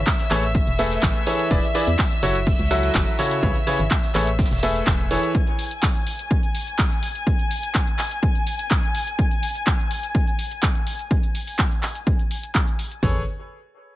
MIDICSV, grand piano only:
0, 0, Header, 1, 2, 480
1, 0, Start_track
1, 0, Key_signature, 3, "major"
1, 0, Tempo, 480000
1, 1508, Time_signature, 4, 2, 24, 8
1, 13959, End_track
2, 0, Start_track
2, 0, Title_t, "Grand piano"
2, 0, Program_c, 0, 0
2, 308, Note_on_c, 0, 69, 75
2, 308, Note_on_c, 0, 71, 76
2, 308, Note_on_c, 0, 73, 93
2, 309, Note_on_c, 0, 57, 81
2, 309, Note_on_c, 0, 68, 74
2, 436, Note_off_c, 0, 57, 0
2, 436, Note_off_c, 0, 68, 0
2, 436, Note_off_c, 0, 69, 0
2, 436, Note_off_c, 0, 71, 0
2, 436, Note_off_c, 0, 73, 0
2, 788, Note_on_c, 0, 69, 86
2, 789, Note_on_c, 0, 57, 94
2, 789, Note_on_c, 0, 68, 88
2, 789, Note_on_c, 0, 71, 87
2, 789, Note_on_c, 0, 76, 104
2, 1241, Note_off_c, 0, 57, 0
2, 1241, Note_off_c, 0, 68, 0
2, 1241, Note_off_c, 0, 69, 0
2, 1241, Note_off_c, 0, 71, 0
2, 1241, Note_off_c, 0, 76, 0
2, 1269, Note_on_c, 0, 52, 85
2, 1269, Note_on_c, 0, 68, 81
2, 1269, Note_on_c, 0, 69, 76
2, 1269, Note_on_c, 0, 71, 78
2, 1269, Note_on_c, 0, 73, 93
2, 1481, Note_off_c, 0, 52, 0
2, 1481, Note_off_c, 0, 68, 0
2, 1481, Note_off_c, 0, 69, 0
2, 1481, Note_off_c, 0, 71, 0
2, 1481, Note_off_c, 0, 73, 0
2, 1509, Note_on_c, 0, 52, 82
2, 1509, Note_on_c, 0, 64, 70
2, 1509, Note_on_c, 0, 68, 74
2, 1509, Note_on_c, 0, 71, 71
2, 1509, Note_on_c, 0, 74, 90
2, 1636, Note_off_c, 0, 52, 0
2, 1636, Note_off_c, 0, 64, 0
2, 1636, Note_off_c, 0, 68, 0
2, 1636, Note_off_c, 0, 71, 0
2, 1636, Note_off_c, 0, 74, 0
2, 1749, Note_on_c, 0, 52, 85
2, 1749, Note_on_c, 0, 64, 74
2, 1749, Note_on_c, 0, 68, 78
2, 1749, Note_on_c, 0, 71, 79
2, 1749, Note_on_c, 0, 74, 92
2, 1876, Note_off_c, 0, 52, 0
2, 1876, Note_off_c, 0, 64, 0
2, 1876, Note_off_c, 0, 68, 0
2, 1876, Note_off_c, 0, 71, 0
2, 1876, Note_off_c, 0, 74, 0
2, 2228, Note_on_c, 0, 54, 83
2, 2228, Note_on_c, 0, 66, 78
2, 2229, Note_on_c, 0, 64, 78
2, 2229, Note_on_c, 0, 69, 78
2, 2229, Note_on_c, 0, 73, 94
2, 2356, Note_off_c, 0, 54, 0
2, 2356, Note_off_c, 0, 64, 0
2, 2356, Note_off_c, 0, 66, 0
2, 2356, Note_off_c, 0, 69, 0
2, 2356, Note_off_c, 0, 73, 0
2, 2708, Note_on_c, 0, 54, 96
2, 2708, Note_on_c, 0, 64, 85
2, 2708, Note_on_c, 0, 66, 87
2, 2708, Note_on_c, 0, 69, 86
2, 2708, Note_on_c, 0, 76, 104
2, 3160, Note_off_c, 0, 66, 0
2, 3161, Note_off_c, 0, 54, 0
2, 3161, Note_off_c, 0, 64, 0
2, 3161, Note_off_c, 0, 69, 0
2, 3161, Note_off_c, 0, 76, 0
2, 3188, Note_on_c, 0, 49, 85
2, 3188, Note_on_c, 0, 64, 78
2, 3188, Note_on_c, 0, 66, 78
2, 3188, Note_on_c, 0, 69, 80
2, 3188, Note_on_c, 0, 73, 93
2, 3400, Note_off_c, 0, 49, 0
2, 3400, Note_off_c, 0, 64, 0
2, 3400, Note_off_c, 0, 66, 0
2, 3400, Note_off_c, 0, 73, 0
2, 3401, Note_off_c, 0, 69, 0
2, 3428, Note_on_c, 0, 49, 79
2, 3428, Note_on_c, 0, 68, 72
2, 3428, Note_on_c, 0, 73, 84
2, 3429, Note_on_c, 0, 64, 72
2, 3429, Note_on_c, 0, 71, 73
2, 3556, Note_off_c, 0, 49, 0
2, 3556, Note_off_c, 0, 64, 0
2, 3556, Note_off_c, 0, 68, 0
2, 3556, Note_off_c, 0, 71, 0
2, 3556, Note_off_c, 0, 73, 0
2, 3669, Note_on_c, 0, 49, 85
2, 3669, Note_on_c, 0, 64, 73
2, 3669, Note_on_c, 0, 68, 76
2, 3669, Note_on_c, 0, 71, 72
2, 3669, Note_on_c, 0, 73, 90
2, 3796, Note_off_c, 0, 49, 0
2, 3796, Note_off_c, 0, 64, 0
2, 3796, Note_off_c, 0, 68, 0
2, 3796, Note_off_c, 0, 71, 0
2, 3796, Note_off_c, 0, 73, 0
2, 4149, Note_on_c, 0, 57, 84
2, 4149, Note_on_c, 0, 68, 74
2, 4149, Note_on_c, 0, 69, 78
2, 4149, Note_on_c, 0, 71, 76
2, 4149, Note_on_c, 0, 73, 91
2, 4276, Note_off_c, 0, 57, 0
2, 4276, Note_off_c, 0, 68, 0
2, 4276, Note_off_c, 0, 69, 0
2, 4276, Note_off_c, 0, 71, 0
2, 4276, Note_off_c, 0, 73, 0
2, 4629, Note_on_c, 0, 57, 92
2, 4629, Note_on_c, 0, 68, 84
2, 4629, Note_on_c, 0, 69, 84
2, 4629, Note_on_c, 0, 71, 85
2, 4629, Note_on_c, 0, 76, 105
2, 5081, Note_off_c, 0, 57, 0
2, 5081, Note_off_c, 0, 68, 0
2, 5081, Note_off_c, 0, 69, 0
2, 5081, Note_off_c, 0, 71, 0
2, 5081, Note_off_c, 0, 76, 0
2, 5108, Note_on_c, 0, 52, 86
2, 5108, Note_on_c, 0, 68, 74
2, 5108, Note_on_c, 0, 69, 75
2, 5108, Note_on_c, 0, 71, 75
2, 5108, Note_on_c, 0, 73, 94
2, 5320, Note_off_c, 0, 68, 0
2, 5321, Note_off_c, 0, 52, 0
2, 5321, Note_off_c, 0, 69, 0
2, 5321, Note_off_c, 0, 71, 0
2, 5321, Note_off_c, 0, 73, 0
2, 13029, Note_on_c, 0, 68, 85
2, 13029, Note_on_c, 0, 69, 75
2, 13029, Note_on_c, 0, 71, 78
2, 13029, Note_on_c, 0, 73, 94
2, 13209, Note_off_c, 0, 68, 0
2, 13209, Note_off_c, 0, 69, 0
2, 13209, Note_off_c, 0, 71, 0
2, 13209, Note_off_c, 0, 73, 0
2, 13959, End_track
0, 0, End_of_file